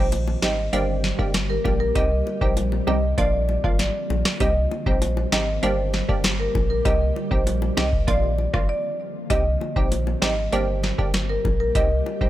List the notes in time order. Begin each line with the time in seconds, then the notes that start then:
Already playing: A#1 G4 C5
0.12 closed hi-hat, high bongo
0.28 high bongo
0.42 G#1 G3 C4 D#4 G4 D#5, cross-stick, snare, low bongo
0.73 G1 G3 A#3 D4 G4 C5, closed hi-hat
1.04 snare, high bongo
1.19 G1 G3 A#3 D4 G4, kick
1.34 cross-stick, snare, closed hi-hat, high bongo
1.50 A#4
1.64 A#1 G3 A#3 D4 G4, kick, high bongo, low bongo
1.80 A#4
1.95 C2 G3 C4 D#4 G4 D#5, kick, closed hi-hat
2.27 high bongo
2.41 A#1 G3 C4 D#4 G4 C5, kick
2.57 closed hi-hat, high bongo
2.72 high bongo
2.87 C2 G3 C4 D#4 G4 D#5, low bongo
3.18 A#1 F3 A#3 D4 F4 D5, kick, closed hi-hat
3.49 high bongo
3.64 G#1 F3 A#3 D4 F4, kick
3.79 D5, snare, closed hi-hat, high bongo
4.10 A#1, high bongo, low bongo
4.25 cross-stick, snare
4.40 C2 G3 C4 D#4 G4 D#5, kick, closed hi-hat
4.71 high bongo
4.86 A#1 G3 C4 D#4 G4 C5, kick
5.02 closed hi-hat, high bongo
5.17 high bongo
5.32 G#1 G3 C4 D#4 G4 D#5, cross-stick, snare, low bongo
5.63 G1 G3 A#3 D4 G4 C5, closed hi-hat
5.93 snare, high bongo
6.09 G1 G3 A#3 D4 G4, kick
6.24 cross-stick, snare, closed hi-hat, high bongo
6.40 A#4
6.55 A#1, kick, high bongo, low bongo
6.70 A#4
6.85 C2 G3 C4 D#4 G4 D#5, kick, closed hi-hat
7.16 high bongo
7.31 A#1 G3 C4 D#4 G4 C5, kick
7.47 closed hi-hat, high bongo
7.62 high bongo
7.77 C2 G3 C4 D#4 G4 D#5, cross-stick, snare, low bongo
7.93 kick
8.07 A#1 F3 A#3 D4 F4 D5, kick, closed hi-hat
8.38 high bongo
8.53 G#1 F3 A#3 D4 F4, kick, cross-stick
8.69 D5
9.30 C2 G3 C4 D#4 G4 D#5, kick, closed hi-hat
9.61 high bongo
9.76 A#1 G3 C4 D#4 G4 C5, kick
9.92 closed hi-hat, high bongo
10.07 high bongo
10.22 G#1 G3 C4 D#4 G4 D#5, cross-stick, snare, low bongo
10.52 G1 G3 A#3 D4 G4 C5, closed hi-hat
10.83 snare, high bongo
10.98 G1 G3 A#3 D4 G4, kick
11.14 cross-stick, snare, closed hi-hat, high bongo
11.29 A#4
11.45 A#1, kick, high bongo, low bongo
11.60 A#4
11.75 C2 G3 C4 D#4 G4 D#5, kick, closed hi-hat
12.06 high bongo
12.21 A#1 G3 C4 D#4 G4 C5, kick